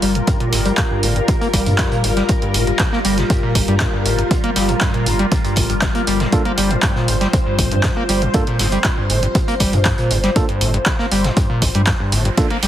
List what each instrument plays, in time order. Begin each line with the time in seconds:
Already playing: string machine G3 F4 A#4
0.02 analog synth bass G1, acid bass G3, closed hi-hat, open hi-hat
0.15 acid bass G2, closed hi-hat
0.27 acid bass G2, kick, closed hi-hat
0.40 acid bass A#2, closed hi-hat
0.53 analog synth bass G1, acid bass G2, snare, closed hi-hat, open hi-hat
0.65 acid bass G3, closed hi-hat
0.77 acid bass G2, kick, snare, clap, closed hi-hat
0.91 acid bass G2
1.03 analog synth bass G1, acid bass A2, closed hi-hat, open hi-hat
1.16 acid bass G2, closed hi-hat
1.28 acid bass G2, kick, closed hi-hat
1.41 acid bass A#3, closed hi-hat
1.53 analog synth bass G1, acid bass G3, kick, closed hi-hat, open hi-hat
1.66 acid bass G2, analog synth bass G2, closed hi-hat
1.78 acid bass G2, kick, snare, clap, closed hi-hat
1.92 acid bass A#2, closed hi-hat
2.04 analog synth bass G1, acid bass G2, closed hi-hat, open hi-hat
2.17 acid bass G3, snare, closed hi-hat
2.28 acid bass G2, kick, closed hi-hat
2.42 acid bass G2, closed hi-hat
2.54 analog synth bass G1, acid bass A2, closed hi-hat, open hi-hat
2.67 acid bass G2, closed hi-hat
2.79 acid bass G2, kick, snare, clap, closed hi-hat
2.93 acid bass A#3, snare
3.05 analog synth bass G1, acid bass G3, closed hi-hat, open hi-hat
3.18 acid bass G2, snare, closed hi-hat
3.30 acid bass G2, kick, closed hi-hat
3.43 acid bass A#2
3.55 analog synth bass G1, acid bass G2, kick, closed hi-hat, open hi-hat
3.68 analog synth bass G2, acid bass G3, closed hi-hat
3.80 acid bass G2, kick, snare, clap, closed hi-hat
3.93 acid bass G2
4.05 analog synth bass G1, acid bass A2, closed hi-hat, open hi-hat
4.19 acid bass G2, closed hi-hat
4.31 acid bass G2, kick, closed hi-hat
4.44 acid bass A#3, closed hi-hat
4.56 analog synth bass G1, acid bass G3, snare, closed hi-hat, open hi-hat
4.68 acid bass G2, closed hi-hat
4.81 acid bass G2, kick, snare, clap, closed hi-hat
4.94 acid bass A#2, closed hi-hat
5.06 analog synth bass G1, acid bass G2, closed hi-hat, open hi-hat
5.19 acid bass G3, closed hi-hat
5.32 acid bass G2, kick, closed hi-hat
5.44 acid bass G2, closed hi-hat
5.56 analog synth bass G1, acid bass A2, kick, closed hi-hat, open hi-hat
5.70 analog synth bass G1, acid bass G2, closed hi-hat
5.81 acid bass G2, kick, snare, clap, closed hi-hat
5.95 acid bass A#3, closed hi-hat
6.07 analog synth bass G1, acid bass G3, closed hi-hat, open hi-hat
6.20 acid bass G2, snare, closed hi-hat
6.32 acid bass G2, tine electric piano A#3 D4 F4 A4, string machine C5, kick, closed hi-hat
6.45 acid bass A#3, closed hi-hat
6.58 analog synth bass G1, acid bass G3, closed hi-hat, open hi-hat
6.71 acid bass G2, closed hi-hat
6.82 acid bass G2, kick, snare, clap, closed hi-hat
6.95 acid bass A#2, snare
7.08 analog synth bass G1, acid bass G2, closed hi-hat, open hi-hat
7.21 acid bass G3, snare, closed hi-hat
7.33 acid bass G2, kick, closed hi-hat
7.46 acid bass G2
7.58 analog synth bass G1, acid bass A2, kick, closed hi-hat, open hi-hat
7.71 analog synth bass G2, acid bass G2, closed hi-hat
7.83 acid bass G2, kick, snare, clap, closed hi-hat
7.97 acid bass A#3
8.09 analog synth bass G1, acid bass G3, closed hi-hat, open hi-hat
8.22 acid bass G2, closed hi-hat
8.33 acid bass G2, tine electric piano A#3 D4 F4 A4, kick, closed hi-hat
8.47 acid bass A#2, closed hi-hat
8.59 analog synth bass G1, acid bass G2, snare, closed hi-hat, open hi-hat
8.71 acid bass G3, closed hi-hat
8.84 acid bass G2, kick, snare, clap, closed hi-hat
8.98 acid bass G2
9.10 analog synth bass G1, acid bass A2, closed hi-hat, open hi-hat
9.23 acid bass G2, closed hi-hat
9.35 acid bass G2, kick, closed hi-hat
9.48 acid bass A#3, closed hi-hat
9.60 analog synth bass G1, acid bass G3, kick, closed hi-hat, open hi-hat
9.73 analog synth bass G2, acid bass G2, closed hi-hat
9.85 acid bass G2, kick, snare, clap, closed hi-hat
9.98 acid bass A#2, closed hi-hat
10.11 analog synth bass G1, acid bass G2, closed hi-hat, open hi-hat
10.23 acid bass G3, snare, closed hi-hat
10.36 acid bass G2, tine electric piano A#3 D4 F4 A4, kick, closed hi-hat, riser
10.49 acid bass G2, closed hi-hat
10.61 analog synth bass G1, acid bass A2, closed hi-hat, open hi-hat
10.74 acid bass G2, closed hi-hat
10.86 acid bass G2, kick, snare, clap, closed hi-hat
10.99 acid bass A#3, snare
11.11 analog synth bass G1, acid bass G3, closed hi-hat, open hi-hat
11.24 acid bass G2, snare, closed hi-hat
11.36 acid bass G2, kick, closed hi-hat
11.50 acid bass A#2
11.62 analog synth bass G1, acid bass G2, kick, closed hi-hat, open hi-hat
11.75 analog synth bass G2, acid bass G3, closed hi-hat
11.87 acid bass G2, kick, snare, clap, closed hi-hat
12.00 acid bass G2
12.12 analog synth bass G1, acid bass A2, closed hi-hat, open hi-hat
12.25 acid bass G2, closed hi-hat
12.37 acid bass G2, tine electric piano A#3 D4 F4 A4, kick, closed hi-hat
12.50 acid bass A#3, closed hi-hat
12.63 analog synth bass G1, acid bass G3, snare, closed hi-hat, open hi-hat